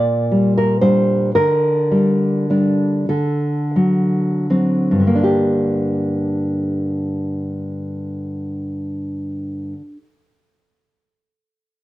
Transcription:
nylon-string guitar
Already playing: A#2 D5
0.31 G3
0.57 A#4
0.81 G3 D4 C5
1.35 D3 A#4
1.91 G3
2.50 G3 D4
3.09 D3 A4
3.76 F#3
4.50 F#3 C4
4.91 G2
5.00 D3
5.07 A#3
5.15 D4
5.23 G4

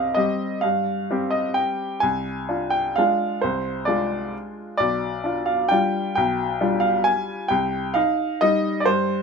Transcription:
grand piano
Already playing: C2 C4 G4 D#5 F5
0.14 G3 C4 G4 D#5
0.61 G2 F5
1.11 G3 C4 G4
1.30 D#5
1.54 G5
2.00 C2 G#5
2.49 D4 F4
2.70 G5
2.96 G#3 D4 F4 F5
3.41 C2 C5
3.85 G#3 D4 F4 D5
4.77 B1 D5
5.24 D4 F4
5.46 F5
5.69 G3 D4 F4 G5
6.15 B1 G5
6.61 G3 D4 F4
6.80 F5
7.04 G#5
7.48 C2 G5
7.94 D#4 F5
8.41 G3 D#4 D#5
8.80 D5
8.85 G2 C5

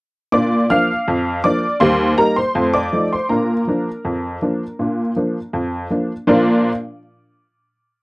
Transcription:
honky-tonk piano
0.32 A#2 D4 D5 D6
0.70 F3 A#3 D4 F5 F6
1.08 F2
1.44 F3 A#3 D4 D5 D6
1.80 D#2 G3 C5 C6
2.18 G3 A#3 D#4 A#4 A#5
2.36 C5 C6
2.55 F2 A3
2.74 D5 D6
2.93 F3 A3 D#4
3.13 C5 C6
3.29 A#2 D4 A#4 A#5
3.67 F3 A#3 D4
4.05 F2
4.42 F3 A#3 D4
4.79 A#2 D4
5.16 F3 A#3 D4
5.53 F2
5.90 F3 A#3 D4
6.27 A#2 F3 D4 F4 A#4 D5

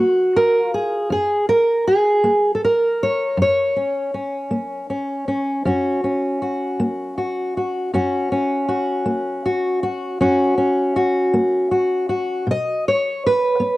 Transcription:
steel-string acoustic guitar
Already playing: A#3 F#4
0.36 A#4
0.64 F4
0.74 G#4
1.10 F#2 G#4
1.49 A#4
1.87 G#4
2.24 A#3
2.55 A4
2.65 A#4
3.03 C#5
3.37 F#2
3.42 C#5
3.76 C#4
4.14 C#4
4.51 A#3
4.90 C#4
5.28 C#4
5.65 F#2 C#4 F#4
6.04 C#4
6.42 F#4
6.80 A#3
7.18 F#4
7.57 F#4
7.94 F#2 C#4 F#4
8.32 C#4
8.69 F#4
9.06 A#3
9.46 F#4
9.83 F#4
10.21 F#2 C#4 F#4
10.58 C#4
10.96 F#4
11.33 A#3
11.71 F#4
12.09 F#4
12.47 B2
12.51 D#5
12.88 C#5
13.27 B4
13.60 B3

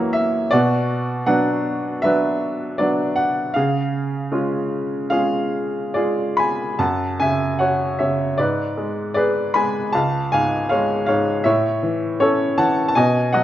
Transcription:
upright piano
Already playing: F#2 E3 F#3 A#3 A#4 C#5 E5 F#5
0.13 E5
0.51 B2 F#4 D5
1.26 F#3 B3 D4 F#5
2.02 F#3 B3 D4 B4 E5
2.78 F#3 B3 D4 D5
3.16 F#5
3.54 C#3 G#4 F5
4.32 G#3 C#4 F4
5.10 G#3 C#4 F4 G#4 F5
5.94 G#3 F4 G#4 D5
6.37 G#5 B5
6.79 F#2 F#5 A5
7.20 C#3 E5 G#5
7.59 F#4 C#5 F#5
7.99 C#3 C#5 E5
8.38 G#2 B4 D5
8.77 G#3
9.14 G#4 B4 D5
9.54 G#3 G#5 B5
9.93 C#2 F5 A5
10.32 G#2 F5 G#5
10.69 G#3 C#5 F5
11.06 G#2 C#5 F5
11.44 A2 C#5 E5
11.83 E3
12.20 C#4 A4 C#5
12.57 E3 F#5 A5
12.88 A5
12.95 B2 D#5 G#5
13.33 F#3 D#5 F#5

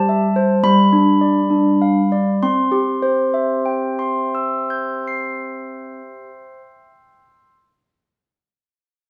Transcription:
handbells
Already playing: G3 G4 A5
0.09 E5
0.36 C5
0.63 G3 B5
0.93 D4
1.21 D5
1.50 D4
1.82 F5
2.12 D5
2.43 C4 C6
2.72 G4
3.02 C5
3.34 E5
3.66 G5
3.99 C6
4.35 E6
4.70 G6
5.08 C7

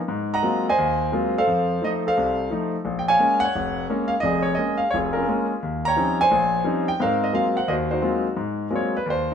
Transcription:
grand piano
0.08 G#2
0.34 D#5 F#5 A#5
0.42 F#3 G#3 A#3 C4 F4
0.69 C5 D#5 G#5
0.78 D#2
1.12 F#3 G#3 A#3 C4 F4
1.38 A4 C5 F5
1.47 F2
1.82 F3 A3 D#4 D#5
2.07 A4 C5 F5
2.17 C2 C3
2.51 F3 A3 D#4
2.85 A#1
2.99 G5
3.08 C#5 F5 G#5
3.19 G#3 A#3 C#4
3.40 F#5
3.45 C#5
3.55 F1
3.90 G#3 A#3 C#4
4.08 F5
4.20 F1 F2 D5 D#5
4.25 G#4
4.43 C#5
4.55 G#3 A#3 C#4 D#5
4.78 F5
4.91 F1 C#5
4.95 F4 G#4
5.13 A#4
5.17 C#4 F4
5.28 G#3 A#3 C#4
5.63 D#2
5.85 C#5 G5 A#5
5.96 F3 G3 C4 C#4 D#4
6.21 C5 C#5 G#5
6.31 A#1
6.64 F3 G3 C4 C#4 D#4
6.88 G5
7.00 G#2 C4 A#4 C5 F5
7.24 D#5
7.33 F#3 G#3 A#3 C4 F4 F5
7.57 F#5
7.68 D#2 F#4 C5 D#5
7.91 D#4 F#4 C5
8.02 F#3 G#3 A#3 C4 F4
8.36 G#2
8.70 F#3 G#3 A#3 C4 F4
8.75 C#5
8.97 B4
9.06 D#2
9.10 C5

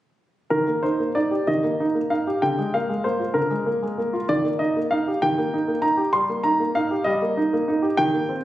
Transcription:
grand piano
0.50 D#3 A#4
0.68 A#3
0.83 D#4 C5
1.00 A#3
1.15 D#4 D5
1.31 G4
1.47 D#3 D#5
1.64 A#3
1.80 D#4
1.95 A#3
2.10 D#4 F5
2.27 G4
2.42 D3 G5
2.59 G#3
2.74 A#3 F5
2.89 G#3
3.04 A#3 C5
3.19 F4
3.34 D3 A#4
3.50 G#3
3.66 A#3
3.82 G#3
3.98 A#3
4.13 F4
4.29 D#3 D5
4.44 A#3
4.59 D#4 D#5
4.77 A#3
4.91 D#4 F5
5.08 G4
5.22 D#3 G5
5.38 A#3
5.54 D#4
5.68 A#3
5.82 D#4 A#5
5.97 G4
6.13 G3 C6
6.30 A#3
6.44 D#4 A#5
6.60 A#3
6.75 D#4 F5
6.91 G4
7.04 G3 D#5
7.22 A#3
7.37 D#4
7.53 A#3
7.68 D#4
7.82 G4
7.97 D#3 G5
8.14 A#3
8.29 C4

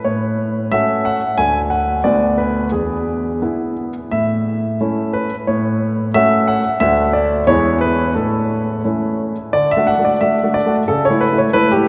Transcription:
grand piano
0.05 A2 C#5
0.72 A3 C#4 F#4 E5
1.05 F#5
1.38 D2 A3 D4 F#4 G#5
1.70 F#5
2.04 D2 B3 D4 F#4 D5
2.38 B4
2.72 E2 G#4
3.42 B3 E4
4.11 A2 E5
4.81 A3 C#4 E4
5.13 B4
5.47 A2 C#5
6.14 A3 C#4 F#4 E5
6.47 F#5
6.80 D2 A3 D4 F#4 E5
7.13 D5
7.47 E2 G#3 D4 E4 C#5
7.81 B4
8.15 A2 A4
8.85 A3 C#4 E4
9.53 D3 D5
9.71 E5
9.77 A3 D4 F#4
9.87 F#5
9.99 A3 D4 F#4
10.05 D5
10.21 A3 D4 F#4 E5
10.43 A3 D4 F#4
10.54 D5
10.66 A3 D4 F#4
10.88 C#3 A4
11.05 C#5
11.10 A3 E4
11.21 B4
11.32 A3 E4
11.38 C#5
11.53 A3 E4 B4
11.72 G4
11.76 A3 E4

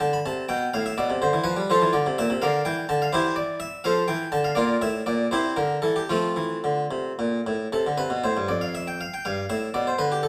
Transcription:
harpsichord
0.00 D3 A5
0.13 B5
0.26 C3 A5
0.49 B2 G5
0.74 A2 F5
0.86 E5
0.98 B2 D5
1.10 C3
1.22 D3 C5
1.33 E3
1.44 F3 B4
1.57 G3
1.70 F3 F4 A4 C5
1.82 E3
1.93 D3 D5
2.06 C3
2.18 A#2 E5
2.30 C3
2.42 D3 A#4 D5 F5
2.65 E3 G5
2.89 D3 A5
3.02 F5
3.13 E3 E4 G4 C5
3.36 D5
3.60 E5
3.84 F3 A4 C5 F5
4.08 E3 G5
4.32 D3 A5
4.44 F5
4.55 A#2 F4 A#4 D5
4.82 A2 E5
5.06 A#2 D5
5.31 C3 E4 G4 C5
5.56 D3 A#4
5.82 E3 A4
5.96 G4
6.09 F3 A3 C4 F4
6.36 E3
6.64 D3
6.91 C3
7.19 A#2
7.47 A2
7.73 C3 A4
7.87 D3
7.97 C3 B4
8.10 B2
8.24 A2 C5
8.37 G2
8.48 F2 D5
8.61 F5
8.75 E5
8.87 G5
9.01 F5
9.14 G5
9.25 G2 F5
9.50 A2 E5
9.74 B2 D5
9.87 C5
9.98 D3 B4
10.12 G4
10.23 A4

